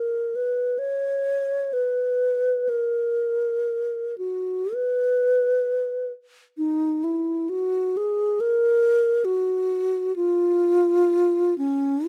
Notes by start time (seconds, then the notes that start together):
Already playing: A#4
0.35 B4
0.79 C#5
1.73 B4
2.69 A#4
4.18 F#4
4.74 B4
6.58 D#4
7.04 E4
7.49 F#4
7.97 G#4
8.40 A#4
9.25 F#4
10.16 F4
11.58 C#4